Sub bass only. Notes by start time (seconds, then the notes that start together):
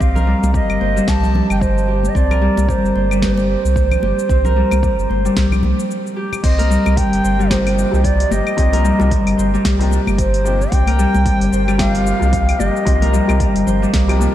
0.00 C2
0.43 C2
0.70 G1
0.81 G1
1.08 C2
1.50 G1
2.15 C2
2.57 C2
2.84 G1
2.95 G1
3.65 C2
4.03 G1
4.29 C2
4.72 C2
4.99 G1
5.10 G1
5.37 C2
5.63 C2
6.44 C2
6.86 C2
7.13 G1
7.24 G1
7.93 C2
8.31 G1
8.58 C2
9.00 C2
9.27 G1
9.38 G1
9.65 C2
10.07 G1
10.72 C2
11.15 C2
11.41 G1
11.52 G1
12.22 C2
12.60 G1
12.86 C2
13.29 C2
13.56 G1
13.68 G1
13.94 C2